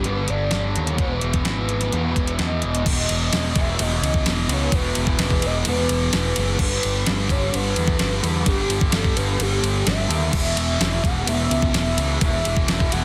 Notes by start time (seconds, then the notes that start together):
Already playing: B3
0.04 G1 G2 D3 G3 B4, closed hi-hat
0.27 G1 D3 G3 D5, closed hi-hat
0.51 G1 G2 D3 G3, snare, closed hi-hat
0.76 D#2 C#5, closed hi-hat
0.87 closed hi-hat
0.97 E1 E2 B2 E3 B4, kick, closed hi-hat
1.21 E1, closed hi-hat
1.33 kick, closed hi-hat
1.45 G#1 E2 B2 E3, snare, closed hi-hat
1.69 closed hi-hat
1.81 snare, closed hi-hat
1.92 E2 B2 E3, closed hi-hat
2.16 E1 B2 E3, kick, closed hi-hat
2.27 closed hi-hat
2.39 E2 B2, snare, closed hi-hat
2.43 E3 D#5
2.62 E1, closed hi-hat
2.75 closed hi-hat
2.86 E1 E2 B2, kick, crash, ride
2.90 E3 D#5
3.09 E1, ride
3.33 E1 E2 B2, snare, ride
3.37 E3
3.56 E1 E3, kick, snare, ride
3.60 B2 E5
3.79 E1 E2 B2 E3 D#5, ride
4.02 C#2, ride
4.14 kick
4.25 E1 E2 B2 E3, snare, ride
4.48 C#2 E3, ride
4.53 B2 C#5
4.72 E1 E2 B2 B4, kick, ride
4.76 E3
4.95 E1, ride
5.07 kick
5.19 E1 E2 B2, snare, ride
5.23 E3
5.30 kick
5.42 E1 E3, ride
5.46 B2 D#5
5.65 E1 E2 B2, ride
5.69 E3 B4
5.89 E1, ride
6.12 E1 E2 B2 E3 B4, snare, ride
6.36 F#1 B2 E3, ride
6.58 G1 G2 D3 G3 B4, kick, crash
6.83 G1, ride
7.06 G1 G2 D3 G3, snare, ride
7.29 G1 D3 G3 C#5, kick, snare, ride
7.51 G1 G2 D3 G3 B4, ride
7.76 E2, ride
7.88 kick
7.99 G1 G2 D3 G3, snare, ride
8.21 E2 D3 G3, ride
8.45 G1 G2 D3 G3 G4, kick, ride
8.69 G1, ride
8.81 kick
8.91 G1 G2 D3 G3 A4, snare, ride
9.04 kick
9.15 G1 D3 G3 B4, ride
9.39 G1 G2 D3 G4, ride
9.43 G3
9.62 G1, ride
9.86 G1 G2 D3 E5, snare, ride
9.90 G3
10.09 D#2 D3 G3, ride
10.32 E1 E2 B2 E3 E5, kick, crash
10.56 E1, ride
10.79 E1 E2 B2 E3, snare, ride
11.03 E1 E3 F#5, kick, snare, ride
11.07 B2
11.26 E1 E2 B2 E3 E5, ride
11.50 C#2, ride
11.62 kick
11.74 E1 E2 B2 E3 E5, snare, ride
11.97 C#2 E3, ride
12.01 B2
12.21 E1 E2 B2 E3 E5, kick, ride
12.45 E1, ride
12.57 kick
12.68 E1 E2 B2 E5, snare, ride
12.72 E3
12.80 kick
12.92 E1 B2 E3 F#5, ride